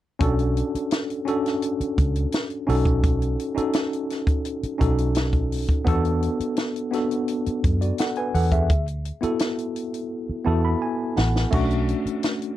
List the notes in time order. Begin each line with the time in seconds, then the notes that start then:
0.19 B1 C#4 D4 F#4 A4, kick, closed hi-hat
0.39 closed hi-hat
0.57 closed hi-hat
0.75 muted fingered electric bass stroke, closed hi-hat
0.91 snare, closed hi-hat
1.10 closed hi-hat
1.25 C#4 D4 F#4 A4, closed hi-hat
1.46 snare, closed hi-hat
1.62 closed hi-hat
1.80 muted fingered electric bass stroke, closed hi-hat
1.98 C#2, kick, closed hi-hat
2.16 closed hi-hat
2.32 snare, closed hi-hat
2.50 closed hi-hat
2.67 B1 C#4 D#4 F#4 A4, open hi-hat
2.85 kick, closed hi-hat
3.04 kick, closed hi-hat
3.22 closed hi-hat
3.40 closed hi-hat
3.55 C#4 D#4 F#4 A4, muted fingered electric bass stroke, closed hi-hat
3.73 snare, closed hi-hat
3.93 closed hi-hat
4.10 snare, closed hi-hat
4.27 kick, closed hi-hat
4.45 closed hi-hat
4.63 muted fingered electric bass stroke, closed hi-hat
4.78 B1 C#4 D#4 F#4 A4, kick, closed hi-hat
4.98 closed hi-hat
5.15 snare, closed hi-hat
5.33 kick, closed hi-hat
5.52 open hi-hat
5.69 kick, closed hi-hat
5.85 E2 B3 D4 F#4 A4, kick, closed hi-hat
6.05 closed hi-hat
6.23 closed hi-hat
6.40 muted fingered electric bass stroke, closed hi-hat
6.57 snare, closed hi-hat
6.76 closed hi-hat
6.91 B3 D4 F#4 A4, snare, closed hi-hat
7.11 closed hi-hat
7.28 closed hi-hat
7.46 muted fingered electric bass stroke, closed hi-hat
7.64 F#2, kick, closed hi-hat
7.81 F#4 D5, closed hi-hat
7.98 A4 F#5, snare, closed hi-hat
8.16 B4 G#5, closed hi-hat
8.35 E2 A4 F#5, open hi-hat
8.52 G#4 E5, kick, closed hi-hat
8.70 D2, kick, closed hi-hat
8.88 closed hi-hat
9.05 closed hi-hat
9.21 B3 E4 F#4 A4, muted fingered electric bass stroke, closed hi-hat
9.39 snare, closed hi-hat
9.59 closed hi-hat
9.76 closed hi-hat
9.94 closed hi-hat
10.29 muted fingered electric bass stroke
10.45 E2 B3 E4 F#4 A4 A5
10.65 B5
10.82 G#5
11.17 A1 F#5, snare
11.36 snare
11.51 B1 A3 C#4 D4 F#4, kick, crash
11.71 closed hi-hat
11.89 closed hi-hat
12.05 muted fingered electric bass stroke, closed hi-hat
12.23 snare, closed hi-hat
12.42 closed hi-hat